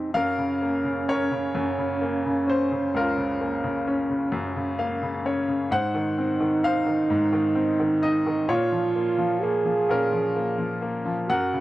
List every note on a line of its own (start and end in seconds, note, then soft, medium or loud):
0.00 0.16 G#3 soft
0.00 0.16 C4 soft
0.00 0.14 D#4 medium
0.14 1.53 F#2 medium
0.14 5.42 C#4 medium
0.14 1.09 A#4 medium
0.14 1.10 F5 loud
0.38 0.83 C#3 soft
0.62 2.00 A#3 soft
0.85 1.30 C#3 soft
1.09 2.46 C#4 medium
1.09 2.46 A#4 medium
1.09 2.53 C#5 medium
1.31 1.77 C#3 soft
1.55 4.30 F#2 medium
1.78 2.24 C#3 soft
2.02 3.39 A#3 soft
2.26 2.70 C#3 soft
2.47 3.86 C#4 soft
2.47 2.97 C5 medium
2.72 3.16 C#3 soft
2.94 5.68 C#2 medium
2.94 4.77 F4 medium
2.94 4.77 A#4 medium
3.17 3.62 C#3 soft
3.41 4.77 A#3 soft
3.64 4.08 C#3 medium
3.87 5.24 C#4 medium
4.10 4.55 C#3 soft
4.32 5.68 F#2 medium
4.56 5.01 C#3 soft
4.79 5.69 A#3 soft
4.79 5.22 F5 medium
5.02 5.46 C#3 medium
5.26 5.71 C#4 medium
5.26 5.69 C#5 medium
5.48 5.71 C#3 soft
5.71 7.09 G#2 medium
5.71 8.51 D#4 medium
5.71 6.64 C5 medium
5.71 6.67 F#5 medium
5.95 6.39 D#3 soft
6.18 7.54 C4 soft
6.41 6.85 D#3 soft
6.63 8.01 D#4 soft
6.63 8.00 C5 medium
6.63 7.99 F5 loud
6.87 7.31 D#3 soft
7.10 8.45 G#2 medium
7.33 7.78 D#3 soft
7.55 8.46 C4 soft
7.80 8.25 D#3 soft
8.02 8.48 D#4 soft
8.02 8.46 D#5 medium
8.27 8.49 D#3 soft
8.49 9.88 A#2 medium
8.49 9.43 F4 loud
8.49 9.85 F4 medium
8.49 9.93 C#5 medium
8.72 9.17 F3 soft
8.96 9.41 A#3 soft
9.18 9.64 F3 medium
9.42 10.34 A#3 medium
9.42 10.82 G#4 loud
9.66 10.10 F3 soft
9.89 11.25 A#2 medium
9.89 11.26 C#4 medium
9.89 11.25 A#4 medium
10.12 10.57 F3 medium
10.36 10.80 A#3 soft
10.58 11.04 F3 soft
10.82 11.27 A#3 medium
11.05 11.28 F3 soft
11.28 11.60 F#2 medium
11.28 11.60 F#4 loud
11.28 11.60 F#5 medium
11.32 11.60 A#4 medium
11.53 11.60 C#3 soft